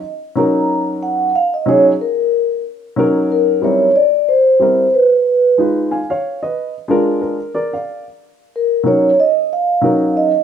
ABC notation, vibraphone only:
X:1
M:4/4
L:1/16
Q:"Swing 16ths" 1/4=92
K:Ebm
V:1 name="Vibraphone"
e z b4 g2 f e d2 B4 | z4 B2 d2 =d2 =c4 _c2- | c2 z12 z2 | z4 B2 d2 e2 f4 e2 |]